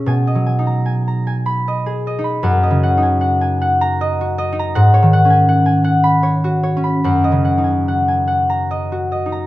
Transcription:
Already playing: B3 G#4
0.06 B2 G#5
0.27 D#5
0.35 F#3
0.46 G#5
0.59 D#4
0.67 A#5
0.86 G#5
1.08 A#5
1.27 G#5
1.46 B5
1.68 D#5
1.86 G#4
2.07 D#5
2.19 D#4
2.24 B5
2.43 F#2 F#5
2.63 D#5
2.71 C#3
2.83 F#5
2.97 D#4
3.03 G#5
3.21 F#5
3.41 G#5
3.62 F#5
3.81 A#5
4.01 D#5
4.21 F#4
4.38 D#5
4.52 D#4
4.59 A#5
4.75 G#2 F#5
4.94 C#5
5.02 D#3
5.13 F#5
5.25 C#4
5.30 G#5
5.49 F#5
5.66 G#5
5.84 F#5
6.04 B5
6.23 C#5
6.44 F#4
6.63 C#5
6.77 C#4
6.84 B5
7.04 F#2 F#5
7.24 D#5
7.32 C#3
7.45 F#5
7.58 D#4
7.64 G#5
7.88 F#5
8.08 G#5
8.27 F#5
8.50 A#5
8.71 D#5
8.92 F#4
9.12 D#5
9.26 D#4
9.32 A#5

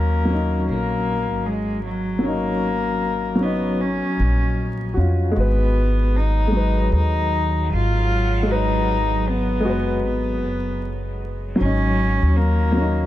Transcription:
Already playing: D#2 F#3 A#3 C#4 D#4
0.25 F#3
0.30 C#4 D#4
0.69 A#1 A#3
1.31 G#1
1.46 G#3
1.86 F#3
2.19 F#3
2.23 A#3 C#4
2.28 D#4
3.35 F#3
3.40 B3 C#4
3.44 D#4
3.81 C#4
4.20 A#1
4.94 F2 C#4 F#4
4.98 F4
5.32 F#3 G#3
5.36 G#1 B3 F#4
5.40 B4
6.17 D#4
6.47 G#3
6.52 F#3
6.57 B4
6.92 D#2 D#4
7.70 G#1 F4
8.43 G#3
8.47 D#4 F#4
8.52 B4
9.28 B3
9.60 G#3
9.65 F#1 F#4
9.69 B4
10.05 G#1 B3
10.44 F#1
11.56 F#3 C#4
11.60 G#1 C#4
11.65 D#4
12.22 D#2
12.37 A#3
12.72 F#3
12.77 C#4
12.81 D#4

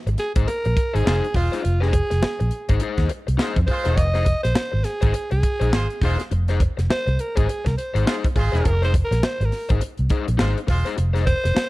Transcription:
0.06 G#1, muted overdriven electric guitar stroke, closed hi-hat
0.18 G#4, snare, closed hi-hat
0.36 G#1 D#4 G#4 C5, kick, closed hi-hat
0.47 A#4, muted overdriven electric guitar stroke, closed hi-hat
0.65 A#1, muted overdriven electric guitar stroke, closed hi-hat
0.77 kick, closed hi-hat
0.94 G#1 D#4 G#4 C5, closed hi-hat
1.05 F1 G#3 D#4 F4 G#4 C5, snare
1.24 closed hi-hat
1.34 E1 G#3 F4 C5, muted overdriven electric guitar stroke, kick, snare, open hi-hat
1.52 D#4 G#4 C5, snare, closed hi-hat
1.63 F1, muted overdriven electric guitar stroke, closed hi-hat
1.81 D#4 G#4 C5, snare
1.93 muted overdriven electric guitar stroke, kick, closed hi-hat
2.10 F1, muted overdriven electric guitar stroke, snare, closed hi-hat
2.22 muted overdriven electric guitar stroke, muted fingered electric bass stroke, snare
2.40 A#1, muted overdriven electric guitar stroke, closed hi-hat
2.51 closed hi-hat
2.69 G#1 D#4 G#4 C5, kick, closed hi-hat
2.80 D#4 G#4 C5, closed hi-hat
2.98 D#2, kick, snare, closed hi-hat
3.09 muted overdriven electric guitar stroke, closed hi-hat
3.27 C2, muted overdriven electric guitar stroke, closed hi-hat
3.38 G#3 D#4 F4 G#4 C5, snare
3.56 F2, kick, closed hi-hat
3.67 G#3 F4 C5, muted overdriven electric guitar stroke, kick, open hi-hat
3.71 C5
3.84 E1 D#4 G#4 C5, snare, closed hi-hat
3.96 F1 D#5, muted overdriven electric guitar stroke, kick, closed hi-hat
4.14 D#4 G#4 C5, snare, closed hi-hat
4.26 muted overdriven electric guitar stroke, kick, closed hi-hat
4.43 A#1 C5, muted overdriven electric guitar stroke, snare, closed hi-hat
4.55 muted overdriven electric guitar stroke, snare
4.72 G#1, muted overdriven electric guitar stroke
4.84 G#4, snare, closed hi-hat
5.01 G#1 D#4 G#4 C5, kick, closed hi-hat
5.14 muted overdriven electric guitar stroke, closed hi-hat
5.31 C2 G#4, muted overdriven electric guitar stroke, closed hi-hat
5.43 kick, closed hi-hat
5.60 A#1 D#4 G#4 C5, closed hi-hat
5.72 G#1 G#3 F4 C5, muted overdriven electric guitar stroke, snare
5.90 closed hi-hat
6.01 E1 G#3 D#4 F4 G#4 C5, kick, snare, open hi-hat
6.19 muted overdriven electric guitar stroke, snare, closed hi-hat
6.31 F1, muted overdriven electric guitar stroke, closed hi-hat
6.48 D#4 G#4 C5, snare, closed hi-hat
6.60 muted overdriven electric guitar stroke, kick, closed hi-hat
6.77 F1, muted overdriven electric guitar stroke, snare, closed hi-hat
6.89 C5, muted fingered electric bass stroke, muted overdriven electric guitar stroke, snare
7.07 C2, muted overdriven electric guitar stroke, closed hi-hat
7.19 A#4, closed hi-hat
7.36 G#1 D#4 G#4 C5, kick, closed hi-hat
7.48 muted overdriven electric guitar stroke, closed hi-hat
7.65 C2 A#4, muted overdriven electric guitar stroke, kick, snare, closed hi-hat
7.77 C5, closed hi-hat
7.94 G#1 D#4 G#4 C5, closed hi-hat
8.06 G#3 D#4 F4 G#4 C5, snare
8.24 kick, closed hi-hat
8.35 G#1 G#3 F4 G#4 C5, muted overdriven electric guitar stroke, kick, open hi-hat
8.52 E1 D#4 G#4 C5, snare, closed hi-hat
8.65 F1 A#4, muted overdriven electric guitar stroke, kick, closed hi-hat
8.82 D#4 G#4 C5, snare, closed hi-hat
8.94 muted overdriven electric guitar stroke, kick, closed hi-hat
9.05 A#4
9.11 A#1, muted overdriven electric guitar stroke, snare, closed hi-hat
9.23 C5, muted fingered electric bass stroke, muted overdriven electric guitar stroke, snare
9.40 G#1, muted overdriven electric guitar stroke, closed hi-hat
9.45 A#4
9.52 snare, open hi-hat
9.69 G#1 D#4 G#4 C5, kick, closed hi-hat
9.81 muted overdriven electric guitar stroke, closed hi-hat
9.97 C2, closed hi-hat
10.10 D#4 G#4 C5, kick, closed hi-hat
10.28 A#1, muted overdriven electric guitar stroke, closed hi-hat
10.38 G#1 G#3 D#4 F4 G#4 C5, snare
10.58 closed hi-hat
10.67 E1 G#3 F4 C5, muted overdriven electric guitar stroke, kick, snare, open hi-hat
10.85 D#4 G#4 C5, snare, closed hi-hat
10.97 F1, muted overdriven electric guitar stroke, closed hi-hat
11.13 D#4 G#4 C5, snare, closed hi-hat
11.26 C5, muted overdriven electric guitar stroke, kick, closed hi-hat
11.44 F1, muted overdriven electric guitar stroke, snare, closed hi-hat
11.55 muted overdriven electric guitar stroke, snare

